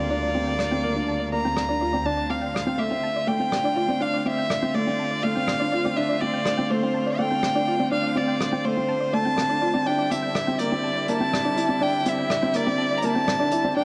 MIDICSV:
0, 0, Header, 1, 7, 480
1, 0, Start_track
1, 0, Key_signature, -1, "minor"
1, 0, Tempo, 487805
1, 107, Time_signature, 4, 2, 24, 8
1, 13619, End_track
2, 0, Start_track
2, 0, Title_t, "Violin"
2, 0, Program_c, 0, 40
2, 0, Note_on_c, 0, 74, 90
2, 1273, Note_off_c, 0, 74, 0
2, 1296, Note_on_c, 0, 82, 102
2, 2021, Note_on_c, 0, 81, 105
2, 2036, Note_off_c, 0, 82, 0
2, 2266, Note_on_c, 0, 77, 88
2, 2281, Note_off_c, 0, 81, 0
2, 2737, Note_on_c, 0, 76, 90
2, 2752, Note_off_c, 0, 77, 0
2, 3221, Note_on_c, 0, 79, 98
2, 3236, Note_off_c, 0, 76, 0
2, 3949, Note_on_c, 0, 77, 96
2, 3963, Note_off_c, 0, 79, 0
2, 4194, Note_on_c, 0, 76, 94
2, 4209, Note_off_c, 0, 77, 0
2, 4668, Note_on_c, 0, 74, 89
2, 4683, Note_off_c, 0, 76, 0
2, 5152, Note_on_c, 0, 77, 101
2, 5167, Note_off_c, 0, 74, 0
2, 5867, Note_on_c, 0, 76, 94
2, 5882, Note_off_c, 0, 77, 0
2, 6107, Note_on_c, 0, 74, 90
2, 6121, Note_off_c, 0, 76, 0
2, 6598, Note_on_c, 0, 72, 90
2, 6612, Note_off_c, 0, 74, 0
2, 7080, Note_on_c, 0, 79, 103
2, 7095, Note_off_c, 0, 72, 0
2, 7789, Note_off_c, 0, 79, 0
2, 7795, Note_on_c, 0, 77, 98
2, 8040, Note_on_c, 0, 74, 92
2, 8054, Note_off_c, 0, 77, 0
2, 8508, Note_on_c, 0, 72, 91
2, 8523, Note_off_c, 0, 74, 0
2, 8991, Note_on_c, 0, 81, 105
2, 9006, Note_off_c, 0, 72, 0
2, 9707, Note_on_c, 0, 79, 104
2, 9722, Note_off_c, 0, 81, 0
2, 9944, Note_on_c, 0, 76, 96
2, 9959, Note_off_c, 0, 79, 0
2, 10414, Note_on_c, 0, 74, 93
2, 10429, Note_off_c, 0, 76, 0
2, 10909, Note_on_c, 0, 81, 106
2, 10924, Note_off_c, 0, 74, 0
2, 11632, Note_on_c, 0, 79, 108
2, 11646, Note_off_c, 0, 81, 0
2, 11887, Note_on_c, 0, 76, 96
2, 11902, Note_off_c, 0, 79, 0
2, 12355, Note_on_c, 0, 74, 96
2, 12370, Note_off_c, 0, 76, 0
2, 12767, Note_on_c, 0, 82, 76
2, 12782, Note_off_c, 0, 74, 0
2, 12839, Note_on_c, 0, 81, 102
2, 12854, Note_off_c, 0, 82, 0
2, 13540, Note_off_c, 0, 81, 0
2, 13546, Note_on_c, 0, 79, 106
2, 13619, Note_off_c, 0, 79, 0
2, 13619, End_track
3, 0, Start_track
3, 0, Title_t, "Synth arpeggio sound"
3, 0, Program_c, 1, 84
3, 105, Note_on_c, 1, 74, 69
3, 183, Note_off_c, 1, 74, 0
3, 225, Note_on_c, 1, 74, 69
3, 278, Note_off_c, 1, 74, 0
3, 341, Note_on_c, 1, 86, 68
3, 396, Note_off_c, 1, 86, 0
3, 463, Note_on_c, 1, 79, 61
3, 496, Note_off_c, 1, 79, 0
3, 586, Note_on_c, 1, 74, 80
3, 638, Note_off_c, 1, 74, 0
3, 701, Note_on_c, 1, 79, 71
3, 755, Note_off_c, 1, 79, 0
3, 822, Note_on_c, 1, 86, 62
3, 876, Note_off_c, 1, 86, 0
3, 1067, Note_on_c, 1, 81, 74
3, 1118, Note_off_c, 1, 81, 0
3, 1178, Note_on_c, 1, 74, 69
3, 1234, Note_off_c, 1, 74, 0
3, 1302, Note_on_c, 1, 74, 66
3, 1356, Note_off_c, 1, 74, 0
3, 1426, Note_on_c, 1, 79, 74
3, 1458, Note_off_c, 1, 79, 0
3, 1536, Note_on_c, 1, 74, 77
3, 1593, Note_off_c, 1, 74, 0
3, 1660, Note_on_c, 1, 74, 93
3, 1695, Note_off_c, 1, 74, 0
3, 1781, Note_on_c, 1, 74, 66
3, 1836, Note_off_c, 1, 74, 0
3, 1899, Note_on_c, 1, 74, 66
3, 1955, Note_off_c, 1, 74, 0
3, 2025, Note_on_c, 1, 74, 79
3, 2103, Note_off_c, 1, 74, 0
3, 2138, Note_on_c, 1, 74, 67
3, 2194, Note_off_c, 1, 74, 0
3, 2261, Note_on_c, 1, 86, 71
3, 2316, Note_off_c, 1, 86, 0
3, 2378, Note_on_c, 1, 79, 71
3, 2414, Note_off_c, 1, 79, 0
3, 2503, Note_on_c, 1, 74, 74
3, 2557, Note_off_c, 1, 74, 0
3, 2627, Note_on_c, 1, 79, 73
3, 2679, Note_off_c, 1, 79, 0
3, 2746, Note_on_c, 1, 86, 67
3, 2798, Note_off_c, 1, 86, 0
3, 2985, Note_on_c, 1, 81, 73
3, 3038, Note_off_c, 1, 81, 0
3, 3110, Note_on_c, 1, 74, 70
3, 3160, Note_off_c, 1, 74, 0
3, 3232, Note_on_c, 1, 74, 69
3, 3281, Note_off_c, 1, 74, 0
3, 3351, Note_on_c, 1, 79, 71
3, 3380, Note_off_c, 1, 79, 0
3, 3466, Note_on_c, 1, 74, 78
3, 3518, Note_off_c, 1, 74, 0
3, 3592, Note_on_c, 1, 74, 94
3, 3621, Note_off_c, 1, 74, 0
3, 3712, Note_on_c, 1, 74, 71
3, 3761, Note_off_c, 1, 74, 0
3, 3839, Note_on_c, 1, 74, 70
3, 3885, Note_off_c, 1, 74, 0
3, 3956, Note_on_c, 1, 74, 80
3, 4029, Note_off_c, 1, 74, 0
3, 4071, Note_on_c, 1, 74, 73
3, 4121, Note_off_c, 1, 74, 0
3, 4190, Note_on_c, 1, 86, 67
3, 4240, Note_off_c, 1, 86, 0
3, 4313, Note_on_c, 1, 79, 68
3, 4341, Note_off_c, 1, 79, 0
3, 4432, Note_on_c, 1, 74, 77
3, 4481, Note_off_c, 1, 74, 0
3, 4550, Note_on_c, 1, 79, 74
3, 4600, Note_off_c, 1, 79, 0
3, 4671, Note_on_c, 1, 86, 68
3, 4721, Note_off_c, 1, 86, 0
3, 4913, Note_on_c, 1, 81, 78
3, 4962, Note_off_c, 1, 81, 0
3, 5028, Note_on_c, 1, 74, 73
3, 5079, Note_off_c, 1, 74, 0
3, 5142, Note_on_c, 1, 74, 64
3, 5196, Note_off_c, 1, 74, 0
3, 5268, Note_on_c, 1, 79, 72
3, 5299, Note_off_c, 1, 79, 0
3, 5387, Note_on_c, 1, 74, 81
3, 5438, Note_off_c, 1, 74, 0
3, 5507, Note_on_c, 1, 74, 92
3, 5538, Note_off_c, 1, 74, 0
3, 5629, Note_on_c, 1, 74, 71
3, 5680, Note_off_c, 1, 74, 0
3, 5754, Note_on_c, 1, 74, 76
3, 5802, Note_off_c, 1, 74, 0
3, 5867, Note_on_c, 1, 74, 77
3, 5944, Note_off_c, 1, 74, 0
3, 5994, Note_on_c, 1, 74, 69
3, 6042, Note_off_c, 1, 74, 0
3, 6108, Note_on_c, 1, 86, 68
3, 6159, Note_off_c, 1, 86, 0
3, 6233, Note_on_c, 1, 79, 70
3, 6261, Note_off_c, 1, 79, 0
3, 6350, Note_on_c, 1, 74, 82
3, 6400, Note_off_c, 1, 74, 0
3, 6469, Note_on_c, 1, 79, 78
3, 6520, Note_off_c, 1, 79, 0
3, 6593, Note_on_c, 1, 86, 66
3, 6642, Note_off_c, 1, 86, 0
3, 6830, Note_on_c, 1, 81, 77
3, 6880, Note_off_c, 1, 81, 0
3, 6952, Note_on_c, 1, 74, 77
3, 7001, Note_off_c, 1, 74, 0
3, 7074, Note_on_c, 1, 74, 70
3, 7122, Note_off_c, 1, 74, 0
3, 7189, Note_on_c, 1, 79, 71
3, 7219, Note_off_c, 1, 79, 0
3, 7312, Note_on_c, 1, 74, 78
3, 7361, Note_off_c, 1, 74, 0
3, 7431, Note_on_c, 1, 74, 95
3, 7460, Note_off_c, 1, 74, 0
3, 7551, Note_on_c, 1, 74, 69
3, 7601, Note_off_c, 1, 74, 0
3, 7671, Note_on_c, 1, 74, 76
3, 7721, Note_off_c, 1, 74, 0
3, 7789, Note_on_c, 1, 74, 82
3, 7866, Note_off_c, 1, 74, 0
3, 7907, Note_on_c, 1, 74, 70
3, 7959, Note_off_c, 1, 74, 0
3, 8033, Note_on_c, 1, 86, 70
3, 8081, Note_off_c, 1, 86, 0
3, 8146, Note_on_c, 1, 79, 75
3, 8177, Note_off_c, 1, 79, 0
3, 8269, Note_on_c, 1, 74, 75
3, 8319, Note_off_c, 1, 74, 0
3, 8389, Note_on_c, 1, 79, 75
3, 8439, Note_off_c, 1, 79, 0
3, 8510, Note_on_c, 1, 86, 67
3, 8560, Note_off_c, 1, 86, 0
3, 8744, Note_on_c, 1, 81, 80
3, 8797, Note_off_c, 1, 81, 0
3, 8860, Note_on_c, 1, 74, 76
3, 8915, Note_off_c, 1, 74, 0
3, 8982, Note_on_c, 1, 74, 66
3, 9036, Note_off_c, 1, 74, 0
3, 9102, Note_on_c, 1, 79, 73
3, 9136, Note_off_c, 1, 79, 0
3, 9215, Note_on_c, 1, 74, 80
3, 9273, Note_off_c, 1, 74, 0
3, 9342, Note_on_c, 1, 74, 101
3, 9376, Note_off_c, 1, 74, 0
3, 9461, Note_on_c, 1, 74, 73
3, 9515, Note_off_c, 1, 74, 0
3, 9580, Note_on_c, 1, 74, 75
3, 9635, Note_off_c, 1, 74, 0
3, 9703, Note_on_c, 1, 74, 75
3, 9782, Note_off_c, 1, 74, 0
3, 9828, Note_on_c, 1, 74, 73
3, 9879, Note_off_c, 1, 74, 0
3, 9939, Note_on_c, 1, 86, 69
3, 9995, Note_off_c, 1, 86, 0
3, 10061, Note_on_c, 1, 79, 73
3, 10095, Note_off_c, 1, 79, 0
3, 10188, Note_on_c, 1, 74, 84
3, 10239, Note_off_c, 1, 74, 0
3, 10304, Note_on_c, 1, 79, 73
3, 10357, Note_off_c, 1, 79, 0
3, 10422, Note_on_c, 1, 86, 68
3, 10476, Note_off_c, 1, 86, 0
3, 10665, Note_on_c, 1, 81, 76
3, 10718, Note_off_c, 1, 81, 0
3, 10782, Note_on_c, 1, 74, 75
3, 10836, Note_off_c, 1, 74, 0
3, 10909, Note_on_c, 1, 74, 66
3, 10959, Note_off_c, 1, 74, 0
3, 11030, Note_on_c, 1, 79, 71
3, 11060, Note_off_c, 1, 79, 0
3, 11150, Note_on_c, 1, 74, 83
3, 11200, Note_off_c, 1, 74, 0
3, 11266, Note_on_c, 1, 74, 96
3, 11298, Note_off_c, 1, 74, 0
3, 11390, Note_on_c, 1, 74, 70
3, 11440, Note_off_c, 1, 74, 0
3, 11510, Note_on_c, 1, 74, 76
3, 11560, Note_off_c, 1, 74, 0
3, 11628, Note_on_c, 1, 74, 75
3, 11705, Note_off_c, 1, 74, 0
3, 11751, Note_on_c, 1, 74, 72
3, 11801, Note_off_c, 1, 74, 0
3, 11869, Note_on_c, 1, 86, 73
3, 11920, Note_off_c, 1, 86, 0
3, 11990, Note_on_c, 1, 79, 77
3, 12019, Note_off_c, 1, 79, 0
3, 12107, Note_on_c, 1, 74, 78
3, 12158, Note_off_c, 1, 74, 0
3, 12225, Note_on_c, 1, 79, 73
3, 12278, Note_off_c, 1, 79, 0
3, 12345, Note_on_c, 1, 86, 72
3, 12398, Note_off_c, 1, 86, 0
3, 12576, Note_on_c, 1, 81, 83
3, 12633, Note_off_c, 1, 81, 0
3, 12703, Note_on_c, 1, 74, 76
3, 12757, Note_off_c, 1, 74, 0
3, 12818, Note_on_c, 1, 74, 70
3, 12874, Note_off_c, 1, 74, 0
3, 12941, Note_on_c, 1, 79, 73
3, 12975, Note_off_c, 1, 79, 0
3, 13062, Note_on_c, 1, 74, 84
3, 13116, Note_off_c, 1, 74, 0
3, 13181, Note_on_c, 1, 74, 107
3, 13215, Note_off_c, 1, 74, 0
3, 13306, Note_on_c, 1, 74, 76
3, 13358, Note_off_c, 1, 74, 0
3, 13428, Note_on_c, 1, 74, 71
3, 13479, Note_off_c, 1, 74, 0
3, 13548, Note_on_c, 1, 74, 79
3, 13619, Note_off_c, 1, 74, 0
3, 13619, End_track
4, 0, Start_track
4, 0, Title_t, "Felt piano"
4, 0, Program_c, 2, 0
4, 102, Note_on_c, 2, 62, 78
4, 268, Note_off_c, 2, 62, 0
4, 342, Note_on_c, 2, 60, 70
4, 508, Note_off_c, 2, 60, 0
4, 709, Note_on_c, 2, 60, 67
4, 790, Note_off_c, 2, 60, 0
4, 824, Note_on_c, 2, 58, 71
4, 907, Note_off_c, 2, 58, 0
4, 944, Note_on_c, 2, 62, 61
4, 1109, Note_off_c, 2, 62, 0
4, 1305, Note_on_c, 2, 58, 68
4, 1388, Note_off_c, 2, 58, 0
4, 1427, Note_on_c, 2, 60, 60
4, 1591, Note_off_c, 2, 60, 0
4, 1670, Note_on_c, 2, 62, 65
4, 1751, Note_off_c, 2, 62, 0
4, 1788, Note_on_c, 2, 65, 64
4, 1870, Note_off_c, 2, 65, 0
4, 1908, Note_on_c, 2, 60, 64
4, 1990, Note_off_c, 2, 60, 0
4, 2023, Note_on_c, 2, 62, 83
4, 2188, Note_off_c, 2, 62, 0
4, 2261, Note_on_c, 2, 60, 68
4, 2427, Note_off_c, 2, 60, 0
4, 2621, Note_on_c, 2, 60, 71
4, 2705, Note_off_c, 2, 60, 0
4, 2733, Note_on_c, 2, 57, 69
4, 2820, Note_off_c, 2, 57, 0
4, 2861, Note_on_c, 2, 60, 64
4, 3027, Note_off_c, 2, 60, 0
4, 3218, Note_on_c, 2, 57, 72
4, 3303, Note_off_c, 2, 57, 0
4, 3340, Note_on_c, 2, 60, 59
4, 3506, Note_off_c, 2, 60, 0
4, 3578, Note_on_c, 2, 62, 66
4, 3663, Note_off_c, 2, 62, 0
4, 3698, Note_on_c, 2, 65, 71
4, 3783, Note_off_c, 2, 65, 0
4, 3821, Note_on_c, 2, 60, 67
4, 3905, Note_off_c, 2, 60, 0
4, 3940, Note_on_c, 2, 62, 86
4, 4107, Note_off_c, 2, 62, 0
4, 4188, Note_on_c, 2, 60, 70
4, 4352, Note_off_c, 2, 60, 0
4, 4550, Note_on_c, 2, 60, 70
4, 4631, Note_off_c, 2, 60, 0
4, 4668, Note_on_c, 2, 57, 75
4, 4750, Note_off_c, 2, 57, 0
4, 4792, Note_on_c, 2, 60, 66
4, 4955, Note_off_c, 2, 60, 0
4, 5152, Note_on_c, 2, 57, 72
4, 5233, Note_off_c, 2, 57, 0
4, 5279, Note_on_c, 2, 60, 64
4, 5439, Note_off_c, 2, 60, 0
4, 5522, Note_on_c, 2, 62, 68
4, 5599, Note_off_c, 2, 62, 0
4, 5644, Note_on_c, 2, 65, 69
4, 5720, Note_off_c, 2, 65, 0
4, 5761, Note_on_c, 2, 60, 70
4, 5838, Note_off_c, 2, 60, 0
4, 5879, Note_on_c, 2, 62, 86
4, 6039, Note_off_c, 2, 62, 0
4, 6118, Note_on_c, 2, 60, 73
4, 6279, Note_off_c, 2, 60, 0
4, 6479, Note_on_c, 2, 60, 76
4, 6557, Note_off_c, 2, 60, 0
4, 6595, Note_on_c, 2, 57, 74
4, 6675, Note_off_c, 2, 57, 0
4, 6719, Note_on_c, 2, 60, 67
4, 6879, Note_off_c, 2, 60, 0
4, 7073, Note_on_c, 2, 57, 75
4, 7153, Note_off_c, 2, 57, 0
4, 7195, Note_on_c, 2, 60, 65
4, 7357, Note_off_c, 2, 60, 0
4, 7434, Note_on_c, 2, 62, 75
4, 7514, Note_off_c, 2, 62, 0
4, 7552, Note_on_c, 2, 65, 72
4, 7632, Note_off_c, 2, 65, 0
4, 7671, Note_on_c, 2, 60, 71
4, 7752, Note_off_c, 2, 60, 0
4, 7786, Note_on_c, 2, 62, 91
4, 7951, Note_off_c, 2, 62, 0
4, 8023, Note_on_c, 2, 60, 71
4, 8188, Note_off_c, 2, 60, 0
4, 8388, Note_on_c, 2, 60, 74
4, 8470, Note_off_c, 2, 60, 0
4, 8506, Note_on_c, 2, 57, 73
4, 8588, Note_off_c, 2, 57, 0
4, 8630, Note_on_c, 2, 60, 71
4, 8793, Note_off_c, 2, 60, 0
4, 8986, Note_on_c, 2, 57, 76
4, 9068, Note_off_c, 2, 57, 0
4, 9109, Note_on_c, 2, 60, 61
4, 9273, Note_off_c, 2, 60, 0
4, 9349, Note_on_c, 2, 62, 70
4, 9430, Note_off_c, 2, 62, 0
4, 9462, Note_on_c, 2, 65, 68
4, 9546, Note_off_c, 2, 65, 0
4, 9589, Note_on_c, 2, 60, 66
4, 9670, Note_off_c, 2, 60, 0
4, 9714, Note_on_c, 2, 62, 84
4, 9876, Note_off_c, 2, 62, 0
4, 9950, Note_on_c, 2, 60, 68
4, 10113, Note_off_c, 2, 60, 0
4, 10311, Note_on_c, 2, 60, 75
4, 10392, Note_off_c, 2, 60, 0
4, 10431, Note_on_c, 2, 58, 76
4, 10512, Note_off_c, 2, 58, 0
4, 10550, Note_on_c, 2, 60, 69
4, 10713, Note_off_c, 2, 60, 0
4, 10908, Note_on_c, 2, 58, 78
4, 10990, Note_off_c, 2, 58, 0
4, 11024, Note_on_c, 2, 60, 67
4, 11189, Note_off_c, 2, 60, 0
4, 11264, Note_on_c, 2, 62, 70
4, 11347, Note_off_c, 2, 62, 0
4, 11378, Note_on_c, 2, 64, 74
4, 11463, Note_off_c, 2, 64, 0
4, 11500, Note_on_c, 2, 60, 71
4, 11584, Note_off_c, 2, 60, 0
4, 11618, Note_on_c, 2, 62, 90
4, 11785, Note_off_c, 2, 62, 0
4, 11867, Note_on_c, 2, 60, 74
4, 12031, Note_off_c, 2, 60, 0
4, 12228, Note_on_c, 2, 60, 75
4, 12310, Note_off_c, 2, 60, 0
4, 12344, Note_on_c, 2, 58, 80
4, 12427, Note_off_c, 2, 58, 0
4, 12464, Note_on_c, 2, 60, 69
4, 12629, Note_off_c, 2, 60, 0
4, 12827, Note_on_c, 2, 58, 80
4, 12909, Note_off_c, 2, 58, 0
4, 12947, Note_on_c, 2, 60, 66
4, 13111, Note_off_c, 2, 60, 0
4, 13186, Note_on_c, 2, 62, 77
4, 13269, Note_off_c, 2, 62, 0
4, 13302, Note_on_c, 2, 64, 76
4, 13386, Note_off_c, 2, 64, 0
4, 13424, Note_on_c, 2, 60, 77
4, 13507, Note_off_c, 2, 60, 0
4, 13542, Note_on_c, 2, 62, 90
4, 13619, Note_off_c, 2, 62, 0
4, 13619, End_track
5, 0, Start_track
5, 0, Title_t, "String quartet"
5, 0, Program_c, 3, 48
5, 0, Note_on_c, 3, 50, 72
5, 0, Note_on_c, 3, 55, 62
5, 0, Note_on_c, 3, 58, 67
5, 0, Note_on_c, 3, 65, 80
5, 1982, Note_off_c, 3, 65, 0
5, 1985, Note_off_c, 3, 50, 0
5, 1985, Note_off_c, 3, 58, 0
5, 1986, Note_off_c, 3, 55, 0
5, 2007, Note_on_c, 3, 57, 72
5, 2009, Note_on_c, 3, 50, 70
5, 2012, Note_on_c, 3, 60, 68
5, 2013, Note_on_c, 3, 65, 88
5, 9658, Note_off_c, 3, 57, 0
5, 9661, Note_off_c, 3, 65, 0
5, 9711, Note_on_c, 3, 55, 73
5, 9714, Note_on_c, 3, 64, 85
5, 13499, Note_off_c, 3, 50, 0
5, 13500, Note_off_c, 3, 60, 0
5, 13512, Note_off_c, 3, 64, 0
5, 13540, Note_on_c, 3, 50, 89
5, 13543, Note_on_c, 3, 65, 92
5, 13546, Note_on_c, 3, 58, 85
5, 13619, Note_off_c, 3, 50, 0
5, 13619, Note_off_c, 3, 55, 0
5, 13619, Note_off_c, 3, 58, 0
5, 13619, Note_off_c, 3, 65, 0
5, 13619, End_track
6, 0, Start_track
6, 0, Title_t, "Double bass section"
6, 0, Program_c, 4, 48
6, 0, Note_on_c, 4, 38, 77
6, 1998, Note_off_c, 4, 38, 0
6, 13619, End_track
7, 0, Start_track
7, 0, Title_t, "Drums"
7, 580, Note_on_c, 9, 37, 70
7, 678, Note_off_c, 9, 37, 0
7, 1542, Note_on_c, 9, 37, 78
7, 1640, Note_off_c, 9, 37, 0
7, 2519, Note_on_c, 9, 37, 88
7, 2618, Note_off_c, 9, 37, 0
7, 3466, Note_on_c, 9, 37, 82
7, 3564, Note_off_c, 9, 37, 0
7, 4429, Note_on_c, 9, 37, 83
7, 4528, Note_off_c, 9, 37, 0
7, 5390, Note_on_c, 9, 37, 88
7, 5489, Note_off_c, 9, 37, 0
7, 6352, Note_on_c, 9, 37, 83
7, 6450, Note_off_c, 9, 37, 0
7, 7311, Note_on_c, 9, 37, 85
7, 7409, Note_off_c, 9, 37, 0
7, 8271, Note_on_c, 9, 37, 80
7, 8370, Note_off_c, 9, 37, 0
7, 9227, Note_on_c, 9, 37, 80
7, 9325, Note_off_c, 9, 37, 0
7, 9951, Note_on_c, 9, 42, 72
7, 10049, Note_off_c, 9, 42, 0
7, 10186, Note_on_c, 9, 37, 85
7, 10284, Note_off_c, 9, 37, 0
7, 10420, Note_on_c, 9, 42, 72
7, 10518, Note_off_c, 9, 42, 0
7, 10902, Note_on_c, 9, 42, 68
7, 11001, Note_off_c, 9, 42, 0
7, 11154, Note_on_c, 9, 37, 83
7, 11253, Note_off_c, 9, 37, 0
7, 11388, Note_on_c, 9, 42, 62
7, 11486, Note_off_c, 9, 42, 0
7, 11861, Note_on_c, 9, 42, 70
7, 11960, Note_off_c, 9, 42, 0
7, 12104, Note_on_c, 9, 37, 78
7, 12203, Note_off_c, 9, 37, 0
7, 12335, Note_on_c, 9, 42, 75
7, 12433, Note_off_c, 9, 42, 0
7, 12813, Note_on_c, 9, 42, 60
7, 12912, Note_off_c, 9, 42, 0
7, 13067, Note_on_c, 9, 37, 89
7, 13165, Note_off_c, 9, 37, 0
7, 13298, Note_on_c, 9, 42, 80
7, 13396, Note_off_c, 9, 42, 0
7, 13619, End_track
0, 0, End_of_file